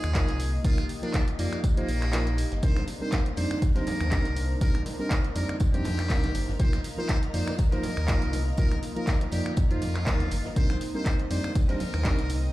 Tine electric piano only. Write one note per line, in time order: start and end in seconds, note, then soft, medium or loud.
0.15 0.28 F3 loud
0.15 0.28 A#3 medium
0.15 0.28 D#4 medium
0.15 0.28 F4 medium
0.15 0.28 A#4 loud
0.64 0.77 F3 medium
0.64 0.77 A#3 medium
0.64 0.77 D#4 medium
0.64 0.78 F4 medium
0.64 0.78 A#4 medium
1.02 1.21 F3 medium
1.02 1.21 A#3 medium
1.02 1.21 D#4 medium
1.02 1.21 F4 medium
1.02 1.21 A#4 medium
1.38 1.58 F3 medium
1.38 1.58 A#3 medium
1.38 1.58 D#4 medium
1.38 1.58 F4 medium
1.38 1.59 D5 medium
1.77 1.88 F3 medium
1.77 1.88 A#3 medium
1.77 1.88 D#4 medium
1.77 1.88 F4 medium
1.77 1.88 C5 loud
2.13 2.26 F3 loud
2.13 2.26 A#3 medium
2.13 2.26 D#4 medium
2.13 2.26 F4 medium
2.13 2.26 A#4 loud
2.62 2.76 G3 medium
2.62 2.76 C4 medium
2.62 2.76 D4 medium
2.62 2.76 D#4 medium
2.62 2.76 A#4 medium
3.01 3.19 G3 medium
3.01 3.19 C4 medium
3.01 3.20 D4 medium
3.01 3.20 D#4 medium
3.01 3.20 A#4 loud
3.37 3.57 G3 medium
3.37 3.57 C4 medium
3.37 3.57 D4 medium
3.37 3.57 D#4 medium
3.37 3.57 D5 medium
3.75 3.86 G3 loud
3.75 3.86 C4 medium
3.75 3.86 D4 medium
3.75 3.86 D#4 medium
3.75 3.87 C5 loud
4.11 4.24 G3 loud
4.11 4.25 C4 medium
4.11 4.25 D4 medium
4.11 4.25 D#4 medium
4.11 4.25 A#4 loud
4.61 4.74 G3 medium
4.61 4.74 C4 medium
4.61 4.74 D4 medium
4.61 4.74 D#4 medium
4.61 4.74 A#4 medium
4.99 5.18 G3 medium
4.99 5.18 C4 medium
4.99 5.18 D4 medium
4.99 5.18 D#4 medium
4.99 5.18 A#4 loud
5.35 5.55 G3 medium
5.35 5.55 C4 medium
5.35 5.55 D4 medium
5.35 5.55 D#4 medium
5.35 5.55 D5 medium
5.74 5.84 G3 loud
5.74 5.85 C4 medium
5.74 5.85 D4 medium
5.74 5.85 D#4 medium
5.74 5.85 C5 loud
6.10 6.23 G3 loud
6.10 6.23 C4 medium
6.10 6.23 D4 medium
6.10 6.23 D#4 medium
6.10 6.23 A#4 loud
6.59 6.72 F3 medium
6.59 6.72 A#3 medium
6.59 6.73 D#4 medium
6.59 6.73 F4 medium
6.59 6.73 A#4 medium
6.98 7.16 F3 medium
6.98 7.16 A#3 medium
6.98 7.16 D#4 medium
6.98 7.16 F4 medium
6.98 7.17 A#4 loud
7.34 7.53 F3 medium
7.34 7.53 A#3 medium
7.34 7.53 D#4 medium
7.34 7.54 F4 medium
7.34 7.54 D5 medium
7.72 7.83 F3 medium
7.72 7.83 A#3 medium
7.72 7.83 D#4 medium
7.72 7.83 F4 medium
7.72 7.83 C5 loud
8.08 8.21 F3 loud
8.08 8.21 A#3 medium
8.08 8.21 D#4 medium
8.08 8.21 F4 medium
8.08 8.22 A#4 loud
8.58 8.71 F3 medium
8.58 8.71 A#3 medium
8.58 8.71 D#4 medium
8.58 8.71 F4 medium
8.58 8.71 A#4 medium
8.96 9.14 F3 medium
8.96 9.15 A#3 medium
8.96 9.15 D#4 medium
8.96 9.15 F4 medium
8.96 9.15 A#4 medium
9.32 9.52 F3 medium
9.32 9.52 A#3 medium
9.32 9.52 D#4 medium
9.32 9.52 F4 medium
9.32 9.52 D5 medium
9.70 9.81 F3 medium
9.70 9.81 A#3 medium
9.70 9.81 D#4 medium
9.70 9.81 F4 medium
9.70 9.82 C5 loud
10.06 10.19 F3 loud
10.06 10.20 A#3 medium
10.06 10.20 D#4 medium
10.06 10.20 F4 medium
10.06 10.20 A#4 loud
10.56 10.69 G3 medium
10.56 10.69 C4 medium
10.56 10.69 D4 medium
10.56 10.69 D#4 medium
10.56 10.69 A#4 medium
10.94 11.13 G3 medium
10.94 11.13 C4 medium
10.94 11.13 D4 medium
10.94 11.13 D#4 medium
10.94 11.13 A#4 medium
11.30 11.50 G3 medium
11.30 11.50 C4 medium
11.30 11.50 D4 medium
11.30 11.50 D#4 medium
11.30 11.50 D5 medium
11.69 11.80 G3 loud
11.69 11.80 C4 medium
11.69 11.80 D4 medium
11.69 11.80 D#4 medium
11.69 11.80 C5 loud
12.05 12.18 G3 loud
12.05 12.18 C4 medium
12.05 12.18 D4 medium
12.05 12.18 D#4 medium
12.05 12.18 A#4 loud